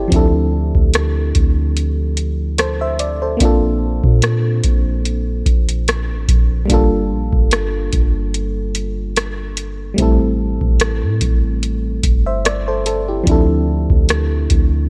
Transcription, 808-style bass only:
0, 0, Header, 1, 2, 480
1, 0, Start_track
1, 0, Tempo, 821918
1, 69, Time_signature, 4, 2, 24, 8
1, 8696, End_track
2, 0, Start_track
2, 0, Title_t, "808-style bass"
2, 0, Program_c, 0, 38
2, 70, Note_on_c, 0, 38, 113
2, 424, Note_off_c, 0, 38, 0
2, 439, Note_on_c, 0, 38, 98
2, 775, Note_off_c, 0, 38, 0
2, 792, Note_on_c, 0, 38, 100
2, 1967, Note_off_c, 0, 38, 0
2, 1990, Note_on_c, 0, 34, 105
2, 2344, Note_off_c, 0, 34, 0
2, 2358, Note_on_c, 0, 46, 98
2, 2694, Note_off_c, 0, 46, 0
2, 2712, Note_on_c, 0, 34, 103
2, 3171, Note_off_c, 0, 34, 0
2, 3189, Note_on_c, 0, 34, 99
2, 3563, Note_on_c, 0, 33, 90
2, 3572, Note_off_c, 0, 34, 0
2, 3666, Note_off_c, 0, 33, 0
2, 3670, Note_on_c, 0, 34, 104
2, 3900, Note_off_c, 0, 34, 0
2, 3912, Note_on_c, 0, 31, 104
2, 4152, Note_on_c, 0, 34, 94
2, 4161, Note_off_c, 0, 31, 0
2, 4274, Note_off_c, 0, 34, 0
2, 4279, Note_on_c, 0, 31, 100
2, 4615, Note_off_c, 0, 31, 0
2, 4632, Note_on_c, 0, 31, 104
2, 5807, Note_off_c, 0, 31, 0
2, 5831, Note_on_c, 0, 33, 112
2, 6185, Note_off_c, 0, 33, 0
2, 6199, Note_on_c, 0, 33, 107
2, 6441, Note_on_c, 0, 45, 97
2, 6450, Note_off_c, 0, 33, 0
2, 6544, Note_off_c, 0, 45, 0
2, 6552, Note_on_c, 0, 33, 100
2, 7011, Note_off_c, 0, 33, 0
2, 7028, Note_on_c, 0, 31, 99
2, 7725, Note_off_c, 0, 31, 0
2, 7749, Note_on_c, 0, 38, 108
2, 8104, Note_off_c, 0, 38, 0
2, 8118, Note_on_c, 0, 38, 99
2, 8455, Note_off_c, 0, 38, 0
2, 8472, Note_on_c, 0, 38, 101
2, 8696, Note_off_c, 0, 38, 0
2, 8696, End_track
0, 0, End_of_file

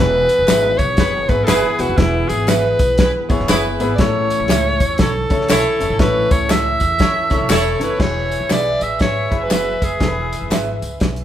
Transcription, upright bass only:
0, 0, Header, 1, 2, 480
1, 0, Start_track
1, 0, Key_signature, 4, "major"
1, 0, Tempo, 501672
1, 1896, Time_signature, 4, 2, 24, 8
1, 10758, End_track
2, 0, Start_track
2, 0, Title_t, "Upright bass"
2, 0, Program_c, 0, 32
2, 0, Note_on_c, 0, 28, 108
2, 239, Note_off_c, 0, 28, 0
2, 370, Note_on_c, 0, 28, 95
2, 447, Note_off_c, 0, 28, 0
2, 461, Note_on_c, 0, 32, 92
2, 721, Note_off_c, 0, 32, 0
2, 755, Note_on_c, 0, 35, 95
2, 913, Note_off_c, 0, 35, 0
2, 939, Note_on_c, 0, 30, 101
2, 1200, Note_off_c, 0, 30, 0
2, 1236, Note_on_c, 0, 32, 88
2, 1393, Note_off_c, 0, 32, 0
2, 1418, Note_on_c, 0, 30, 94
2, 1548, Note_off_c, 0, 30, 0
2, 1714, Note_on_c, 0, 28, 91
2, 1793, Note_off_c, 0, 28, 0
2, 1810, Note_on_c, 0, 30, 96
2, 1887, Note_off_c, 0, 30, 0
2, 1893, Note_on_c, 0, 28, 108
2, 2156, Note_off_c, 0, 28, 0
2, 2201, Note_on_c, 0, 32, 89
2, 2617, Note_off_c, 0, 32, 0
2, 2677, Note_on_c, 0, 35, 98
2, 2964, Note_off_c, 0, 35, 0
2, 3159, Note_on_c, 0, 32, 102
2, 3236, Note_off_c, 0, 32, 0
2, 3255, Note_on_c, 0, 30, 95
2, 3329, Note_off_c, 0, 30, 0
2, 3343, Note_on_c, 0, 30, 93
2, 3642, Note_off_c, 0, 30, 0
2, 3642, Note_on_c, 0, 32, 96
2, 3796, Note_off_c, 0, 32, 0
2, 3815, Note_on_c, 0, 33, 97
2, 4077, Note_off_c, 0, 33, 0
2, 4208, Note_on_c, 0, 33, 103
2, 4297, Note_off_c, 0, 33, 0
2, 4297, Note_on_c, 0, 37, 96
2, 4558, Note_off_c, 0, 37, 0
2, 4598, Note_on_c, 0, 40, 91
2, 4753, Note_off_c, 0, 40, 0
2, 4779, Note_on_c, 0, 35, 105
2, 5038, Note_off_c, 0, 35, 0
2, 5077, Note_on_c, 0, 37, 92
2, 5232, Note_off_c, 0, 37, 0
2, 5256, Note_on_c, 0, 35, 106
2, 5386, Note_off_c, 0, 35, 0
2, 5557, Note_on_c, 0, 30, 91
2, 5634, Note_off_c, 0, 30, 0
2, 5647, Note_on_c, 0, 32, 97
2, 5723, Note_off_c, 0, 32, 0
2, 5732, Note_on_c, 0, 33, 108
2, 5994, Note_off_c, 0, 33, 0
2, 6039, Note_on_c, 0, 37, 96
2, 6455, Note_off_c, 0, 37, 0
2, 6520, Note_on_c, 0, 40, 90
2, 6804, Note_off_c, 0, 40, 0
2, 6996, Note_on_c, 0, 37, 94
2, 7073, Note_off_c, 0, 37, 0
2, 7088, Note_on_c, 0, 35, 86
2, 7164, Note_off_c, 0, 35, 0
2, 7171, Note_on_c, 0, 28, 107
2, 7434, Note_off_c, 0, 28, 0
2, 7471, Note_on_c, 0, 30, 88
2, 7629, Note_off_c, 0, 30, 0
2, 7650, Note_on_c, 0, 28, 93
2, 7992, Note_off_c, 0, 28, 0
2, 8038, Note_on_c, 0, 33, 82
2, 8119, Note_off_c, 0, 33, 0
2, 8130, Note_on_c, 0, 35, 86
2, 8394, Note_off_c, 0, 35, 0
2, 8434, Note_on_c, 0, 33, 83
2, 8591, Note_off_c, 0, 33, 0
2, 8614, Note_on_c, 0, 32, 89
2, 8876, Note_off_c, 0, 32, 0
2, 8913, Note_on_c, 0, 30, 86
2, 9333, Note_off_c, 0, 30, 0
2, 9395, Note_on_c, 0, 30, 87
2, 9552, Note_off_c, 0, 30, 0
2, 9571, Note_on_c, 0, 28, 94
2, 9913, Note_off_c, 0, 28, 0
2, 9962, Note_on_c, 0, 30, 85
2, 10042, Note_off_c, 0, 30, 0
2, 10051, Note_on_c, 0, 32, 78
2, 10315, Note_off_c, 0, 32, 0
2, 10353, Note_on_c, 0, 37, 83
2, 10512, Note_off_c, 0, 37, 0
2, 10541, Note_on_c, 0, 35, 91
2, 10758, Note_off_c, 0, 35, 0
2, 10758, End_track
0, 0, End_of_file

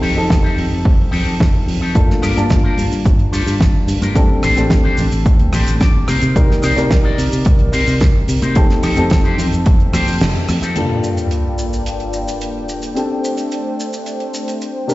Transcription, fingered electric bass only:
0, 0, Header, 1, 2, 480
1, 0, Start_track
1, 0, Key_signature, -2, "minor"
1, 0, Tempo, 550459
1, 1703, Time_signature, 4, 2, 24, 8
1, 13029, End_track
2, 0, Start_track
2, 0, Title_t, "Fingered electric bass"
2, 0, Program_c, 0, 33
2, 22, Note_on_c, 0, 41, 82
2, 124, Note_off_c, 0, 41, 0
2, 144, Note_on_c, 0, 41, 93
2, 242, Note_off_c, 0, 41, 0
2, 264, Note_on_c, 0, 29, 92
2, 364, Note_off_c, 0, 29, 0
2, 501, Note_on_c, 0, 41, 90
2, 603, Note_off_c, 0, 41, 0
2, 624, Note_on_c, 0, 41, 72
2, 722, Note_off_c, 0, 41, 0
2, 743, Note_on_c, 0, 29, 85
2, 844, Note_off_c, 0, 29, 0
2, 983, Note_on_c, 0, 41, 92
2, 1084, Note_off_c, 0, 41, 0
2, 1104, Note_on_c, 0, 41, 81
2, 1202, Note_off_c, 0, 41, 0
2, 1224, Note_on_c, 0, 29, 81
2, 1324, Note_off_c, 0, 29, 0
2, 1462, Note_on_c, 0, 41, 86
2, 1563, Note_off_c, 0, 41, 0
2, 1583, Note_on_c, 0, 41, 77
2, 1681, Note_off_c, 0, 41, 0
2, 1703, Note_on_c, 0, 31, 94
2, 1804, Note_off_c, 0, 31, 0
2, 1942, Note_on_c, 0, 43, 84
2, 2043, Note_off_c, 0, 43, 0
2, 2065, Note_on_c, 0, 43, 95
2, 2162, Note_off_c, 0, 43, 0
2, 2183, Note_on_c, 0, 31, 94
2, 2284, Note_off_c, 0, 31, 0
2, 2423, Note_on_c, 0, 43, 88
2, 2524, Note_off_c, 0, 43, 0
2, 2544, Note_on_c, 0, 43, 74
2, 2642, Note_off_c, 0, 43, 0
2, 2664, Note_on_c, 0, 31, 97
2, 2862, Note_off_c, 0, 31, 0
2, 2901, Note_on_c, 0, 43, 87
2, 3003, Note_off_c, 0, 43, 0
2, 3022, Note_on_c, 0, 43, 89
2, 3121, Note_off_c, 0, 43, 0
2, 3144, Note_on_c, 0, 31, 91
2, 3244, Note_off_c, 0, 31, 0
2, 3379, Note_on_c, 0, 43, 83
2, 3482, Note_off_c, 0, 43, 0
2, 3502, Note_on_c, 0, 43, 88
2, 3601, Note_off_c, 0, 43, 0
2, 3622, Note_on_c, 0, 38, 94
2, 3724, Note_off_c, 0, 38, 0
2, 3861, Note_on_c, 0, 33, 84
2, 3963, Note_off_c, 0, 33, 0
2, 3982, Note_on_c, 0, 33, 93
2, 4081, Note_off_c, 0, 33, 0
2, 4103, Note_on_c, 0, 38, 94
2, 4204, Note_off_c, 0, 38, 0
2, 4341, Note_on_c, 0, 33, 95
2, 4443, Note_off_c, 0, 33, 0
2, 4466, Note_on_c, 0, 33, 77
2, 4563, Note_off_c, 0, 33, 0
2, 4584, Note_on_c, 0, 38, 99
2, 4782, Note_off_c, 0, 38, 0
2, 4822, Note_on_c, 0, 33, 87
2, 4923, Note_off_c, 0, 33, 0
2, 4945, Note_on_c, 0, 33, 87
2, 5042, Note_off_c, 0, 33, 0
2, 5064, Note_on_c, 0, 38, 91
2, 5164, Note_off_c, 0, 38, 0
2, 5302, Note_on_c, 0, 48, 84
2, 5403, Note_off_c, 0, 48, 0
2, 5426, Note_on_c, 0, 48, 92
2, 5523, Note_off_c, 0, 48, 0
2, 5545, Note_on_c, 0, 36, 98
2, 5645, Note_off_c, 0, 36, 0
2, 5783, Note_on_c, 0, 48, 85
2, 5884, Note_off_c, 0, 48, 0
2, 5903, Note_on_c, 0, 48, 99
2, 6001, Note_off_c, 0, 48, 0
2, 6023, Note_on_c, 0, 36, 96
2, 6124, Note_off_c, 0, 36, 0
2, 6264, Note_on_c, 0, 48, 91
2, 6364, Note_off_c, 0, 48, 0
2, 6387, Note_on_c, 0, 48, 80
2, 6483, Note_off_c, 0, 48, 0
2, 6505, Note_on_c, 0, 36, 98
2, 6703, Note_off_c, 0, 36, 0
2, 6747, Note_on_c, 0, 48, 84
2, 6846, Note_off_c, 0, 48, 0
2, 6867, Note_on_c, 0, 48, 93
2, 6963, Note_off_c, 0, 48, 0
2, 6984, Note_on_c, 0, 36, 93
2, 7085, Note_off_c, 0, 36, 0
2, 7222, Note_on_c, 0, 48, 88
2, 7323, Note_off_c, 0, 48, 0
2, 7344, Note_on_c, 0, 48, 93
2, 7442, Note_off_c, 0, 48, 0
2, 7465, Note_on_c, 0, 29, 94
2, 7565, Note_off_c, 0, 29, 0
2, 7703, Note_on_c, 0, 41, 89
2, 7804, Note_off_c, 0, 41, 0
2, 7827, Note_on_c, 0, 41, 97
2, 7923, Note_off_c, 0, 41, 0
2, 7945, Note_on_c, 0, 29, 97
2, 8045, Note_off_c, 0, 29, 0
2, 8185, Note_on_c, 0, 41, 94
2, 8285, Note_off_c, 0, 41, 0
2, 8308, Note_on_c, 0, 41, 80
2, 8404, Note_off_c, 0, 41, 0
2, 8425, Note_on_c, 0, 29, 91
2, 8525, Note_off_c, 0, 29, 0
2, 8663, Note_on_c, 0, 41, 98
2, 8764, Note_off_c, 0, 41, 0
2, 8785, Note_on_c, 0, 41, 89
2, 8882, Note_off_c, 0, 41, 0
2, 8903, Note_on_c, 0, 29, 89
2, 9004, Note_off_c, 0, 29, 0
2, 9144, Note_on_c, 0, 41, 93
2, 9245, Note_off_c, 0, 41, 0
2, 9265, Note_on_c, 0, 41, 82
2, 9362, Note_off_c, 0, 41, 0
2, 13029, End_track
0, 0, End_of_file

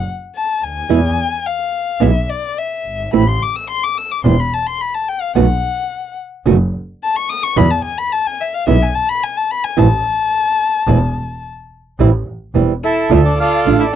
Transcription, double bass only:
0, 0, Header, 1, 2, 480
1, 0, Start_track
1, 0, Key_signature, 0, "minor"
1, 0, Tempo, 557621
1, 772, Time_signature, 4, 2, 24, 8
1, 4137, Tempo, 552995
1, 12077, End_track
2, 0, Start_track
2, 0, Title_t, "Double bass"
2, 0, Program_c, 0, 43
2, 528, Note_on_c, 0, 38, 52
2, 755, Note_off_c, 0, 38, 0
2, 760, Note_on_c, 0, 40, 97
2, 968, Note_off_c, 0, 40, 0
2, 1723, Note_on_c, 0, 35, 92
2, 1930, Note_off_c, 0, 35, 0
2, 2449, Note_on_c, 0, 31, 54
2, 2689, Note_off_c, 0, 31, 0
2, 2694, Note_on_c, 0, 33, 95
2, 2898, Note_off_c, 0, 33, 0
2, 3657, Note_on_c, 0, 28, 89
2, 3859, Note_off_c, 0, 28, 0
2, 4613, Note_on_c, 0, 35, 94
2, 4818, Note_off_c, 0, 35, 0
2, 5572, Note_on_c, 0, 30, 95
2, 5777, Note_off_c, 0, 30, 0
2, 6534, Note_on_c, 0, 40, 96
2, 6735, Note_off_c, 0, 40, 0
2, 7492, Note_on_c, 0, 35, 95
2, 7693, Note_off_c, 0, 35, 0
2, 8452, Note_on_c, 0, 33, 100
2, 8653, Note_off_c, 0, 33, 0
2, 9408, Note_on_c, 0, 28, 96
2, 9612, Note_off_c, 0, 28, 0
2, 10376, Note_on_c, 0, 33, 92
2, 10581, Note_off_c, 0, 33, 0
2, 10855, Note_on_c, 0, 28, 62
2, 11061, Note_off_c, 0, 28, 0
2, 11336, Note_on_c, 0, 38, 100
2, 11541, Note_off_c, 0, 38, 0
2, 11818, Note_on_c, 0, 33, 61
2, 12021, Note_off_c, 0, 33, 0
2, 12077, End_track
0, 0, End_of_file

